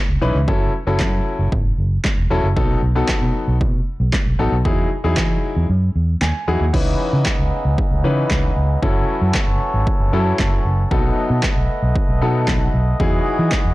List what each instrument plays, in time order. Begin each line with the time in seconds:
0.09 fingered electric bass C#2
0.21 fingered electric bass B1, grand piano E3 C#4 D#4 B4
0.35 fingered electric bass C#2
0.48 grand piano F#3 C#4 E4 A4, kick
0.87 fingered electric bass F#1, grand piano F#3 C#4 E4 A4
0.99 fingered electric bass F#2, kick, snare, clap
1.39 fingered electric bass F#1
1.52 fingered electric bass G#1, kick
1.78 fingered electric bass F#1
2.04 kick, snare, clap
2.17 fingered electric bass E1
2.30 fingered electric bass E1, grand piano F#3 C#4 E4 A4
2.43 fingered electric bass F#1
2.56 grand piano F#3 B3 D#4 A4, kick
2.83 fingered electric bass B1
2.95 grand piano F#3 B3 D#4 A4
3.08 kick, snare, clap
3.22 fingered electric bass B2
3.48 fingered electric bass B1
3.61 fingered electric bass B2, kick
4.00 fingered electric bass B1
4.13 kick, snare, clap
4.26 fingered electric bass B1
4.39 fingered electric bass A1, grand piano F#3 B3 D#4 A4
4.52 fingered electric bass B1
4.65 grand piano F#3 D#4 E4 G#4, kick
5.04 fingered electric bass E2, grand piano F#3 D#4 E4 G#4
5.16 fingered electric bass E3, kick, snare, clap
5.56 fingered electric bass E2
5.70 fingered electric bass F#2
5.96 fingered electric bass E2
6.21 fingered electric bass D#2, grand piano G#5, snare, clap
6.48 fingered electric bass E2, grand piano F#3 D#4 E4 G#4 F#5
6.61 fingered electric bass D#2
6.73 fingered electric bass C#2, accordion C#3 E3 B3 D#4, grand piano E3 C#4 D#4 B4, kick, crash
7.13 fingered electric bass C#3
7.25 kick, snare, clap
7.39 fingered electric bass C#2
7.65 fingered electric bass C#2
7.78 kick
7.91 fingered electric bass C#2
8.04 fingered electric bass C#3, grand piano E3 C#4 D#4 B4
8.30 fingered electric bass C#2, kick, snare, clap
8.57 fingered electric bass C#2
8.82 fingered electric bass F#1, grand piano F#3 C#4 E4 A4, accordion F#3 C#4 A4, kick
9.22 fingered electric bass F#2
9.34 kick, snare, clap
9.48 fingered electric bass F#1
9.74 fingered electric bass G#1
9.87 kick
10.00 fingered electric bass F#1
10.13 fingered electric bass F#2, grand piano F#3 C#4 E4 A4
10.39 fingered electric bass F#1, kick, snare, clap
10.65 fingered electric bass F#1
10.91 fingered electric bass B1, grand piano F#3 B3 D#4 A4, accordion A3 B3 D#5, kick
11.30 fingered electric bass B2
11.42 kick, snare, clap
11.56 fingered electric bass B1
11.83 fingered electric bass B1
11.96 kick
12.09 fingered electric bass B1
12.21 fingered electric bass B2, grand piano F#3 B3 D#4 A4
12.47 fingered electric bass B1, kick, snare, clap
12.74 fingered electric bass B1
13.00 fingered electric bass E2, accordion E3 F#4 G#4, grand piano F#3 D#4 E4 G#4, kick
13.39 fingered electric bass E3
13.51 kick, snare, clap
13.65 fingered electric bass E2